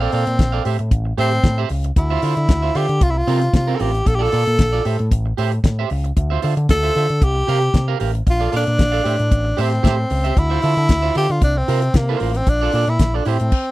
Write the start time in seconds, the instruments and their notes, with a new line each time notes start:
Already playing: tenor saxophone C4
0.00 clean electric guitar A4 D5 F5
0.12 picked electric bass A#2, clean electric guitar A4 D5 F5, open hi-hat
0.27 picked electric bass A#2, muted clean electric guitar stroke, closed hi-hat
0.39 picked electric bass A#1, muted clean electric guitar stroke, kick, snare, closed hi-hat
0.52 clean electric guitar A4 D5 F5
0.65 picked electric bass A2, clean electric guitar G4 C5 E5, open hi-hat
0.79 picked electric bass A2, muted clean electric guitar stroke, closed hi-hat
0.91 picked electric bass A1, kick, closed hi-hat
1.05 muted clean electric guitar stroke
1.18 picked electric bass A2, tenor saxophone C4, clean electric guitar G4 C5 E5, open hi-hat
1.32 muted clean electric guitar stroke, snare, closed hi-hat
1.44 picked electric bass A2, muted clean electric guitar stroke, kick, snare, closed hi-hat
1.58 clean electric guitar G4 C5 E5
1.69 picked electric bass C#2, open hi-hat
1.84 muted clean electric guitar stroke, closed hi-hat
1.96 picked electric bass D2, tenor saxophone E4, muted clean electric guitar stroke, kick, closed hi-hat
2.10 clean electric guitar F4 C5 E5
2.22 picked electric bass D3, clean electric guitar F4 C5 E5, open hi-hat
2.37 picked electric bass D3, muted clean electric guitar stroke, closed hi-hat
2.49 picked electric bass D2, muted clean electric guitar stroke, kick, snare, closed hi-hat
2.62 clean electric guitar F4 C5 E5
2.75 picked electric bass D3, clean electric guitar F4 C5 E5, tenor saxophone G4, open hi-hat
2.89 picked electric bass D3, muted clean electric guitar stroke, closed hi-hat
3.01 picked electric bass C2, tenor saxophone F4, muted clean electric guitar stroke, kick, closed hi-hat
3.10 tenor saxophone E4
3.14 tenor saxophone F4, muted clean electric guitar stroke
3.27 picked electric bass C3, clean electric guitar C4 F4 A#4, open hi-hat
3.41 muted clean electric guitar stroke, snare, closed hi-hat
3.53 picked electric bass C3, tenor saxophone F4, muted clean electric guitar stroke, kick, snare, closed hi-hat
3.67 clean electric guitar C4 F4 A#4
3.76 clean electric guitar C4, tenor saxophone A4, open hi-hat
3.80 picked electric bass A1, clean electric guitar F4 A#4, tenor saxophone G4
3.93 muted clean electric guitar stroke, closed hi-hat
4.05 picked electric bass A#1, tenor saxophone A4, muted clean electric guitar stroke, kick, closed hi-hat
4.15 tenor saxophone G4, clean electric guitar D5
4.20 clean electric guitar F4 A4, tenor saxophone A4
4.32 picked electric bass A#2, clean electric guitar F4 A4 D5, open hi-hat
4.46 picked electric bass A#2, muted clean electric guitar stroke, closed hi-hat
4.59 picked electric bass A#1, muted clean electric guitar stroke, kick, snare, closed hi-hat
4.72 clean electric guitar F4 A4 D5
4.85 picked electric bass A2, clean electric guitar G4 C5 E5, open hi-hat
4.99 picked electric bass A2, muted clean electric guitar stroke, closed hi-hat
5.11 picked electric bass A1, muted clean electric guitar stroke, kick, closed hi-hat
5.26 muted clean electric guitar stroke
5.37 picked electric bass A2, clean electric guitar G4 C5 E5, open hi-hat
5.52 muted clean electric guitar stroke, closed hi-hat
5.64 picked electric bass A2, muted clean electric guitar stroke, kick, snare, closed hi-hat
5.79 clean electric guitar G4 C5 E5
5.90 picked electric bass C#2, muted clean electric guitar stroke, open hi-hat
6.04 muted clean electric guitar stroke, closed hi-hat
6.17 picked electric bass D2, muted clean electric guitar stroke, kick, closed hi-hat
6.30 clean electric guitar F4 C5 E5
6.42 picked electric bass D3, clean electric guitar F4 C5 E5, open hi-hat
6.57 picked electric bass D3, muted clean electric guitar stroke, closed hi-hat
6.69 picked electric bass D2, tenor saxophone A4, muted clean electric guitar stroke, kick, snare, closed hi-hat
6.83 clean electric guitar F4 C5 E5
6.95 picked electric bass D3, clean electric guitar F4 C5 E5, open hi-hat
7.09 picked electric bass D3, muted clean electric guitar stroke, closed hi-hat
7.22 picked electric bass C2, tenor saxophone G4, muted clean electric guitar stroke, kick, closed hi-hat
7.35 muted clean electric guitar stroke
7.47 picked electric bass C3, clean electric guitar G4 A#4 F5, open hi-hat
7.61 muted clean electric guitar stroke, closed hi-hat
7.74 picked electric bass C3, muted clean electric guitar stroke, kick, snare, closed hi-hat
7.88 clean electric guitar G4 A#4 F5
8.00 picked electric bass A1, clean electric guitar G4 A#4 F5, open hi-hat
8.14 muted clean electric guitar stroke, closed hi-hat
8.27 picked electric bass A#1, tenor saxophone F4, muted clean electric guitar stroke, kick, closed hi-hat
8.40 clean electric guitar A4 D5 F5
8.52 picked electric bass A#2, clean electric guitar A4 D5 F5, open hi-hat
8.56 tenor saxophone D4
8.66 picked electric bass A#2, muted clean electric guitar stroke, closed hi-hat
8.78 picked electric bass A#1, muted clean electric guitar stroke, kick, snare, closed hi-hat
8.92 clean electric guitar A4 D5 F5
9.04 picked electric bass A2, clean electric guitar G4 C5 E5, open hi-hat
9.18 picked electric bass A2, muted clean electric guitar stroke, closed hi-hat
9.31 picked electric bass A1, muted clean electric guitar stroke, kick, closed hi-hat
9.45 muted clean electric guitar stroke
9.57 picked electric bass A2, tenor saxophone C4, clean electric guitar G4 C5 E5, open hi-hat
9.71 muted clean electric guitar stroke, snare, closed hi-hat
9.83 picked electric bass A2, clean electric guitar G4 C5 E5, kick, snare, closed hi-hat
9.97 muted clean electric guitar stroke
10.10 picked electric bass C#2, muted clean electric guitar stroke, open hi-hat
10.24 clean electric guitar G4 C5 E5, closed hi-hat
10.37 picked electric bass D2, tenor saxophone E4, muted clean electric guitar stroke, kick, closed hi-hat
10.50 clean electric guitar F4 C5 E5
10.62 picked electric bass D3, clean electric guitar F4 C5 E5, open hi-hat
10.77 picked electric bass D3, muted clean electric guitar stroke, closed hi-hat
10.89 picked electric bass D2, muted clean electric guitar stroke, kick, snare, closed hi-hat
11.02 clean electric guitar F4 C5 E5
11.15 picked electric bass D3, clean electric guitar F4 C5 E5, tenor saxophone G4, open hi-hat
11.29 picked electric bass D3, tenor saxophone F4, muted clean electric guitar stroke, closed hi-hat
11.42 picked electric bass C2, tenor saxophone D4, muted clean electric guitar stroke, kick, closed hi-hat
11.56 tenor saxophone C4, muted clean electric guitar stroke
11.68 picked electric bass C3, clean electric guitar F4 A#4 C5, open hi-hat
11.82 muted clean electric guitar stroke, closed hi-hat
11.94 picked electric bass C3, tenor saxophone A#3, muted clean electric guitar stroke, kick, snare, closed hi-hat
12.09 clean electric guitar F4 A#4 C5
12.20 picked electric bass A1, clean electric guitar F4 A#4 C5, open hi-hat
12.34 tenor saxophone C4, muted clean electric guitar stroke, closed hi-hat
12.47 picked electric bass A#1, tenor saxophone D4, muted clean electric guitar stroke, kick, closed hi-hat
12.62 clean electric guitar F4 A4 D5
12.72 picked electric bass A#2, clean electric guitar F4 A4 D5, open hi-hat
12.87 picked electric bass A#2, tenor saxophone E4, muted clean electric guitar stroke, closed hi-hat
12.99 picked electric bass A#1, muted clean electric guitar stroke, kick, snare, closed hi-hat
13.14 tenor saxophone D4, clean electric guitar F4 A4 D5
13.25 picked electric bass A2, tenor saxophone C4, clean electric guitar E4 G4 C5, open hi-hat
13.40 picked electric bass A2, closed hi-hat
13.52 kick, crash